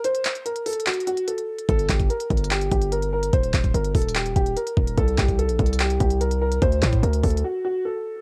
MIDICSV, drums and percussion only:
0, 0, Header, 1, 2, 480
1, 0, Start_track
1, 0, Key_signature, -2, "minor"
1, 0, Tempo, 410959
1, 51, Time_signature, 4, 2, 24, 8
1, 9595, End_track
2, 0, Start_track
2, 0, Title_t, "Drums"
2, 51, Note_on_c, 9, 42, 77
2, 167, Note_off_c, 9, 42, 0
2, 171, Note_on_c, 9, 42, 46
2, 288, Note_off_c, 9, 42, 0
2, 290, Note_on_c, 9, 42, 83
2, 292, Note_on_c, 9, 39, 97
2, 407, Note_off_c, 9, 42, 0
2, 408, Note_off_c, 9, 39, 0
2, 411, Note_on_c, 9, 42, 51
2, 528, Note_off_c, 9, 42, 0
2, 534, Note_on_c, 9, 42, 77
2, 651, Note_off_c, 9, 42, 0
2, 651, Note_on_c, 9, 42, 56
2, 768, Note_off_c, 9, 42, 0
2, 772, Note_on_c, 9, 42, 64
2, 773, Note_on_c, 9, 46, 81
2, 852, Note_off_c, 9, 42, 0
2, 852, Note_on_c, 9, 42, 63
2, 890, Note_off_c, 9, 46, 0
2, 931, Note_off_c, 9, 42, 0
2, 931, Note_on_c, 9, 42, 64
2, 1010, Note_on_c, 9, 39, 115
2, 1011, Note_off_c, 9, 42, 0
2, 1011, Note_on_c, 9, 42, 66
2, 1092, Note_off_c, 9, 42, 0
2, 1092, Note_on_c, 9, 42, 64
2, 1127, Note_off_c, 9, 39, 0
2, 1172, Note_off_c, 9, 42, 0
2, 1172, Note_on_c, 9, 42, 63
2, 1252, Note_off_c, 9, 42, 0
2, 1252, Note_on_c, 9, 42, 86
2, 1368, Note_off_c, 9, 42, 0
2, 1369, Note_on_c, 9, 42, 58
2, 1486, Note_off_c, 9, 42, 0
2, 1492, Note_on_c, 9, 42, 81
2, 1609, Note_off_c, 9, 42, 0
2, 1612, Note_on_c, 9, 42, 52
2, 1729, Note_off_c, 9, 42, 0
2, 1852, Note_on_c, 9, 42, 42
2, 1968, Note_off_c, 9, 42, 0
2, 1971, Note_on_c, 9, 36, 126
2, 1971, Note_on_c, 9, 42, 72
2, 2088, Note_off_c, 9, 36, 0
2, 2088, Note_off_c, 9, 42, 0
2, 2091, Note_on_c, 9, 42, 49
2, 2208, Note_off_c, 9, 42, 0
2, 2211, Note_on_c, 9, 42, 84
2, 2212, Note_on_c, 9, 36, 98
2, 2212, Note_on_c, 9, 39, 96
2, 2327, Note_off_c, 9, 42, 0
2, 2329, Note_off_c, 9, 36, 0
2, 2329, Note_off_c, 9, 39, 0
2, 2331, Note_on_c, 9, 36, 96
2, 2331, Note_on_c, 9, 42, 50
2, 2448, Note_off_c, 9, 36, 0
2, 2448, Note_off_c, 9, 42, 0
2, 2454, Note_on_c, 9, 42, 77
2, 2571, Note_off_c, 9, 42, 0
2, 2571, Note_on_c, 9, 42, 57
2, 2688, Note_off_c, 9, 42, 0
2, 2691, Note_on_c, 9, 36, 96
2, 2691, Note_on_c, 9, 42, 48
2, 2771, Note_off_c, 9, 42, 0
2, 2771, Note_on_c, 9, 42, 61
2, 2807, Note_off_c, 9, 36, 0
2, 2852, Note_off_c, 9, 42, 0
2, 2852, Note_on_c, 9, 42, 78
2, 2930, Note_off_c, 9, 42, 0
2, 2930, Note_on_c, 9, 42, 72
2, 2931, Note_on_c, 9, 39, 116
2, 3047, Note_off_c, 9, 42, 0
2, 3048, Note_off_c, 9, 39, 0
2, 3052, Note_on_c, 9, 42, 59
2, 3168, Note_off_c, 9, 42, 0
2, 3171, Note_on_c, 9, 42, 86
2, 3172, Note_on_c, 9, 36, 98
2, 3288, Note_off_c, 9, 42, 0
2, 3289, Note_off_c, 9, 36, 0
2, 3289, Note_on_c, 9, 42, 58
2, 3406, Note_off_c, 9, 42, 0
2, 3412, Note_on_c, 9, 42, 84
2, 3528, Note_off_c, 9, 42, 0
2, 3532, Note_on_c, 9, 42, 53
2, 3648, Note_off_c, 9, 42, 0
2, 3771, Note_on_c, 9, 42, 70
2, 3888, Note_off_c, 9, 42, 0
2, 3890, Note_on_c, 9, 42, 75
2, 3891, Note_on_c, 9, 36, 118
2, 4007, Note_off_c, 9, 42, 0
2, 4008, Note_off_c, 9, 36, 0
2, 4011, Note_on_c, 9, 42, 47
2, 4128, Note_off_c, 9, 42, 0
2, 4130, Note_on_c, 9, 42, 85
2, 4131, Note_on_c, 9, 39, 99
2, 4132, Note_on_c, 9, 36, 94
2, 4247, Note_off_c, 9, 42, 0
2, 4248, Note_off_c, 9, 36, 0
2, 4248, Note_off_c, 9, 39, 0
2, 4251, Note_on_c, 9, 36, 92
2, 4251, Note_on_c, 9, 42, 50
2, 4368, Note_off_c, 9, 36, 0
2, 4368, Note_off_c, 9, 42, 0
2, 4373, Note_on_c, 9, 42, 76
2, 4490, Note_off_c, 9, 42, 0
2, 4490, Note_on_c, 9, 42, 57
2, 4607, Note_off_c, 9, 42, 0
2, 4610, Note_on_c, 9, 36, 97
2, 4611, Note_on_c, 9, 42, 47
2, 4613, Note_on_c, 9, 46, 83
2, 4692, Note_off_c, 9, 42, 0
2, 4692, Note_on_c, 9, 42, 62
2, 4727, Note_off_c, 9, 36, 0
2, 4729, Note_off_c, 9, 46, 0
2, 4772, Note_off_c, 9, 42, 0
2, 4772, Note_on_c, 9, 42, 78
2, 4850, Note_off_c, 9, 42, 0
2, 4850, Note_on_c, 9, 42, 73
2, 4851, Note_on_c, 9, 39, 116
2, 4967, Note_off_c, 9, 42, 0
2, 4968, Note_off_c, 9, 39, 0
2, 4972, Note_on_c, 9, 42, 59
2, 5089, Note_off_c, 9, 42, 0
2, 5092, Note_on_c, 9, 36, 99
2, 5092, Note_on_c, 9, 42, 84
2, 5209, Note_off_c, 9, 36, 0
2, 5209, Note_off_c, 9, 42, 0
2, 5210, Note_on_c, 9, 42, 59
2, 5327, Note_off_c, 9, 42, 0
2, 5333, Note_on_c, 9, 42, 82
2, 5449, Note_off_c, 9, 42, 0
2, 5452, Note_on_c, 9, 42, 53
2, 5569, Note_off_c, 9, 42, 0
2, 5571, Note_on_c, 9, 36, 98
2, 5688, Note_off_c, 9, 36, 0
2, 5692, Note_on_c, 9, 42, 70
2, 5809, Note_off_c, 9, 42, 0
2, 5811, Note_on_c, 9, 36, 125
2, 5811, Note_on_c, 9, 42, 77
2, 5928, Note_off_c, 9, 36, 0
2, 5928, Note_off_c, 9, 42, 0
2, 5931, Note_on_c, 9, 42, 47
2, 6048, Note_off_c, 9, 42, 0
2, 6050, Note_on_c, 9, 42, 84
2, 6052, Note_on_c, 9, 36, 98
2, 6052, Note_on_c, 9, 39, 97
2, 6167, Note_off_c, 9, 42, 0
2, 6168, Note_off_c, 9, 39, 0
2, 6169, Note_off_c, 9, 36, 0
2, 6171, Note_on_c, 9, 36, 95
2, 6171, Note_on_c, 9, 42, 51
2, 6288, Note_off_c, 9, 36, 0
2, 6288, Note_off_c, 9, 42, 0
2, 6293, Note_on_c, 9, 42, 78
2, 6410, Note_off_c, 9, 42, 0
2, 6411, Note_on_c, 9, 42, 56
2, 6528, Note_off_c, 9, 42, 0
2, 6530, Note_on_c, 9, 36, 97
2, 6531, Note_on_c, 9, 42, 48
2, 6611, Note_off_c, 9, 42, 0
2, 6611, Note_on_c, 9, 42, 63
2, 6647, Note_off_c, 9, 36, 0
2, 6691, Note_off_c, 9, 42, 0
2, 6691, Note_on_c, 9, 42, 77
2, 6770, Note_off_c, 9, 42, 0
2, 6770, Note_on_c, 9, 39, 112
2, 6770, Note_on_c, 9, 42, 72
2, 6887, Note_off_c, 9, 39, 0
2, 6887, Note_off_c, 9, 42, 0
2, 6892, Note_on_c, 9, 42, 61
2, 7009, Note_off_c, 9, 42, 0
2, 7011, Note_on_c, 9, 42, 88
2, 7012, Note_on_c, 9, 36, 104
2, 7128, Note_off_c, 9, 36, 0
2, 7128, Note_off_c, 9, 42, 0
2, 7129, Note_on_c, 9, 42, 58
2, 7246, Note_off_c, 9, 42, 0
2, 7252, Note_on_c, 9, 42, 82
2, 7369, Note_off_c, 9, 42, 0
2, 7371, Note_on_c, 9, 42, 54
2, 7488, Note_off_c, 9, 42, 0
2, 7612, Note_on_c, 9, 42, 69
2, 7728, Note_off_c, 9, 42, 0
2, 7731, Note_on_c, 9, 36, 122
2, 7731, Note_on_c, 9, 42, 77
2, 7848, Note_off_c, 9, 36, 0
2, 7848, Note_off_c, 9, 42, 0
2, 7851, Note_on_c, 9, 42, 48
2, 7968, Note_off_c, 9, 42, 0
2, 7970, Note_on_c, 9, 42, 84
2, 7971, Note_on_c, 9, 39, 97
2, 7972, Note_on_c, 9, 36, 95
2, 8087, Note_off_c, 9, 42, 0
2, 8088, Note_off_c, 9, 36, 0
2, 8088, Note_off_c, 9, 39, 0
2, 8091, Note_on_c, 9, 36, 94
2, 8091, Note_on_c, 9, 42, 52
2, 8208, Note_off_c, 9, 36, 0
2, 8208, Note_off_c, 9, 42, 0
2, 8213, Note_on_c, 9, 42, 78
2, 8330, Note_off_c, 9, 42, 0
2, 8331, Note_on_c, 9, 42, 54
2, 8448, Note_off_c, 9, 42, 0
2, 8450, Note_on_c, 9, 36, 99
2, 8451, Note_on_c, 9, 42, 66
2, 8453, Note_on_c, 9, 46, 79
2, 8531, Note_off_c, 9, 42, 0
2, 8531, Note_on_c, 9, 42, 67
2, 8567, Note_off_c, 9, 36, 0
2, 8569, Note_off_c, 9, 46, 0
2, 8611, Note_off_c, 9, 42, 0
2, 8611, Note_on_c, 9, 42, 63
2, 8728, Note_off_c, 9, 42, 0
2, 9595, End_track
0, 0, End_of_file